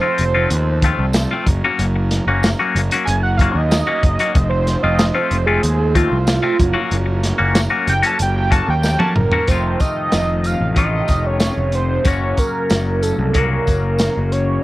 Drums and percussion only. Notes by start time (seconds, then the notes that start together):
0.18 closed hi-hat
0.50 closed hi-hat
0.82 kick, closed hi-hat
1.13 snare, closed hi-hat, tambourine
1.47 kick, closed hi-hat
1.79 closed hi-hat
2.11 snare, closed hi-hat
2.43 snare, closed hi-hat, tambourine
2.76 closed hi-hat
2.91 closed hi-hat
3.07 closed hi-hat
3.39 kick, closed hi-hat
3.71 snare, closed hi-hat, tambourine
4.03 kick, closed hi-hat
4.19 closed hi-hat
4.35 kick, closed hi-hat
4.67 snare, closed hi-hat
4.99 snare, closed hi-hat, tambourine
5.31 closed hi-hat
5.63 closed hi-hat
5.95 kick, closed hi-hat
6.27 snare, closed hi-hat, tambourine
6.60 kick, closed hi-hat
6.91 closed hi-hat
7.23 snare, closed hi-hat
7.55 snare, closed hi-hat, tambourine
7.87 closed hi-hat
8.03 closed hi-hat
8.19 closed hi-hat
8.52 kick, closed hi-hat
8.83 snare, tambourine
9.00 high tom
9.16 mid tom
9.32 floor tom
9.47 kick, closed hi-hat, tambourine
9.80 kick, closed hi-hat, tambourine
10.12 snare, closed hi-hat, tambourine
10.44 closed hi-hat, tambourine
10.76 kick, closed hi-hat, tambourine
11.08 kick, closed hi-hat, tambourine
11.40 snare, closed hi-hat, tambourine
11.72 closed hi-hat, tambourine
12.05 kick, closed hi-hat, tambourine
12.37 kick, closed hi-hat, tambourine
12.70 snare, closed hi-hat, tambourine
13.02 closed hi-hat, tambourine
13.34 kick, closed hi-hat, tambourine
13.67 kick, closed hi-hat, tambourine
13.98 snare, closed hi-hat, tambourine
14.32 closed hi-hat, tambourine